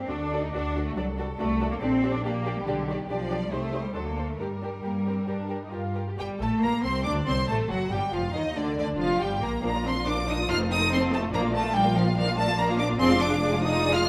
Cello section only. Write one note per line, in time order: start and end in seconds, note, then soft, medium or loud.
0.00 0.10 C4 medium
0.09 0.43 D4 medium
0.43 0.54 D#4 medium
0.53 0.85 D4 medium
0.86 0.97 A3 medium
0.97 1.05 F#3 medium
1.18 1.26 G3 medium
1.39 1.71 A3 medium
1.71 1.75 A#3 medium
1.81 2.13 C4 medium
2.15 2.25 D4 medium
2.25 2.56 A#3 medium
2.58 2.68 G3 medium
2.68 2.89 D3 medium
2.90 3.10 D#3 medium
3.11 3.41 F3 medium
3.43 3.53 G3 medium
3.52 3.83 A3 medium
3.85 3.95 G3 medium
3.96 4.06 F#3 medium
4.07 4.29 A#3 medium
4.30 4.40 A3 medium
4.40 5.97 G3 medium
6.20 6.40 G3 medium
6.42 6.63 A3 medium
6.63 6.84 A#3 medium
6.83 7.05 C4 medium
7.06 7.14 D4 medium
7.27 7.35 C4 medium
7.49 7.70 A3 medium
7.71 7.91 F#3 medium
7.93 8.01 G3 medium
8.14 8.22 F3 medium
8.35 8.43 D#3 medium
8.56 8.76 D3 medium
8.78 8.86 D3 medium
8.99 9.20 F3 medium
9.21 9.42 G3 medium
9.41 9.49 A#3 medium
9.63 9.71 A#3 medium
9.84 9.92 C4 medium
10.06 10.14 D4 medium
10.27 10.35 D#4 medium
10.49 10.57 F4 loud
10.70 10.91 D#4 medium
10.92 11.12 C4 loud
11.13 11.33 A3 medium
11.33 11.53 A#3 medium
11.53 11.74 A3 medium
11.74 11.95 G3 medium
11.95 12.03 F3 medium
12.17 12.25 F3 medium
12.37 12.58 A3 medium
12.58 12.79 A#3 medium
12.79 13.00 D4 medium
12.99 13.20 C4 loud
13.21 13.62 D4 medium
13.62 13.93 D#4 medium
13.94 14.09 F4 medium